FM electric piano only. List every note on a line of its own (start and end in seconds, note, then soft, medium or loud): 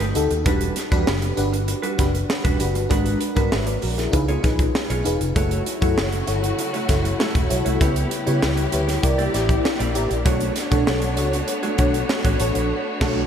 0.00 0.15 D#4 medium
0.00 0.15 F#4 medium
0.00 0.15 G4 medium
0.00 0.16 A4 loud
0.15 0.40 D#4 medium
0.15 0.40 F#4 medium
0.15 0.40 G4 medium
0.15 0.40 A4 loud
0.45 0.82 D4 medium
0.45 0.83 F#4 medium
0.45 0.83 G4 medium
0.45 0.83 B4 medium
0.91 1.29 D4 medium
0.91 1.29 F#4 medium
0.91 1.29 G4 medium
0.91 1.29 B4 loud
1.37 1.87 D4 medium
1.37 1.87 F#4 medium
1.37 1.87 G4 medium
1.37 1.87 B4 loud
1.98 2.48 D4 medium
1.98 2.48 F#4 medium
1.98 2.48 G4 medium
1.98 2.48 B4 medium
2.59 2.85 D4 medium
2.59 2.85 F#4 medium
2.59 2.85 G4 medium
2.59 2.85 B4 loud
2.89 3.27 D4 medium
2.89 3.27 F#4 medium
2.89 3.27 A#4 medium
2.89 3.28 B4 medium
3.35 3.73 D4 medium
3.35 3.52 F#4 medium
3.35 3.52 A#4 medium
3.35 3.52 B4 loud
3.51 3.67 C#5 medium
3.51 3.66 E5 medium
3.66 3.82 B4 medium
3.66 3.81 D5 medium
3.82 3.97 F#4 medium
3.82 3.97 A#4 medium
3.97 4.27 E4 medium
3.97 4.11 G#4 medium
4.12 4.37 D#4 medium
4.12 4.38 F4 medium
4.12 4.38 G#4 medium
4.12 4.38 B4 loud
4.43 4.93 D#4 medium
4.43 4.93 F4 medium
4.43 4.93 G#4 medium
4.43 4.93 B4 loud
5.04 5.29 D#4 medium
5.04 5.30 F4 medium
5.04 5.30 G#4 medium
5.04 5.30 B4 medium
5.35 5.73 E4 medium
5.35 5.73 F#4 medium
5.35 5.73 A4 medium
5.35 5.73 C#5 medium
5.81 6.18 E4 medium
5.81 6.19 F#4 medium
5.81 6.19 A4 medium
5.81 6.19 C#5 medium
6.27 6.77 E4 medium
6.27 6.77 F#4 medium
6.27 6.77 A4 medium
6.27 6.77 C#5 loud
6.88 7.38 E4 medium
6.88 7.38 F#4 medium
6.88 7.38 A4 medium
6.88 7.39 C#5 medium
7.49 7.74 E4 medium
7.49 7.75 F#4 medium
7.49 7.75 A4 medium
7.49 7.75 C#5 loud
7.80 8.18 E4 medium
7.80 8.18 G4 medium
7.80 8.18 B4 medium
7.80 8.18 C#5 medium
8.26 8.64 E4 medium
8.26 8.64 G4 medium
8.26 8.64 B4 medium
8.26 8.64 C#5 loud
8.72 9.01 E4 medium
8.72 9.02 G4 medium
8.72 9.03 B4 medium
8.72 9.04 C#5 loud
9.03 9.28 E4 medium
9.03 9.28 G4 medium
9.03 9.28 A#4 medium
9.03 9.28 D5 loud
9.33 9.83 E4 medium
9.33 9.83 G4 medium
9.33 9.83 A#4 medium
9.33 9.84 D5 loud
9.94 10.19 E4 medium
9.94 10.20 G4 medium
9.94 10.20 A#4 medium
9.94 10.20 D5 loud
10.24 10.62 D4 medium
10.24 10.62 F#4 medium
10.24 10.63 A4 medium
10.24 10.63 C#5 loud
10.70 11.08 D4 medium
10.70 11.08 F#4 medium
10.70 11.08 A4 medium
10.70 11.09 C#5 loud
11.17 11.66 D4 medium
11.17 11.67 F#4 medium
11.17 11.67 A4 medium
11.17 11.67 C#5 loud
11.78 12.28 D4 medium
11.78 12.28 F#4 medium
11.78 12.28 A4 medium
11.78 12.28 C#5 loud
12.40 12.64 D4 medium
12.40 12.65 F#4 medium
12.40 12.65 A4 medium
12.40 12.65 C#5 loud
13.01 13.22 D4 medium
13.01 13.22 F#4 medium
13.01 13.22 A4 loud
13.01 13.23 C#5 medium